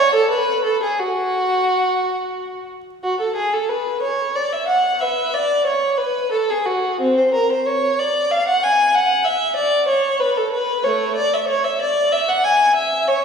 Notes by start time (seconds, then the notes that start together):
Already playing: C#5
0.14 A4
0.30 B4
0.64 A4
0.83 G#4
0.99 F#4
3.03 F#4
3.20 A4
3.35 G#4
3.53 A4
3.69 B4
4.02 C#5
4.35 D5
4.53 E5
4.68 F#5
5.00 B4 E5
5.33 D5
5.66 C#5
5.97 B4
6.32 A4
6.50 G#4
6.66 F#4
7.00 C4
7.18 C5
7.34 A#4
7.52 C5
7.66 C#5
7.99 D5
8.31 F5
8.47 F#5
8.63 G#5
8.95 F#5
9.24 E5
9.56 D5
9.87 C#5
10.20 B4
10.37 A4
10.52 B4
10.83 A3 C#5
11.16 D5
11.33 E5
11.48 C#5
11.64 E5
11.81 D5
12.12 E5
12.28 F#5
12.44 G#5
12.75 E5
13.08 C#5